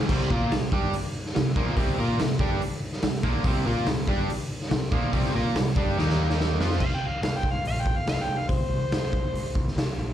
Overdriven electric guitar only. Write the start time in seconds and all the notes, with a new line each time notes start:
0.10 C3 G3 C4
0.31 A#3 F4 A#4
0.53 C3 G3
0.73 G3 D4 G4
1.35 C3 G3
1.56 A#2 F3 A#3
1.77 C3 G3 C4
1.99 A#3 F4 A#4
2.19 C3 G3
2.40 G3 D4 G4
3.03 C3 G3
3.23 A#2 F3 A#3
3.45 C3 G3 C4
3.66 A#3 F4 A#4
3.88 C3 G3
4.08 G3 D4 G4
4.70 C3 G3
4.92 A#2 F3 A#3
5.12 C3 G3 C4
5.34 A#3 F4 A#4
5.56 C3 G3
5.77 G3 D4 G4
5.98 D#3 A#3 D#4
6.61 F3 C4 F4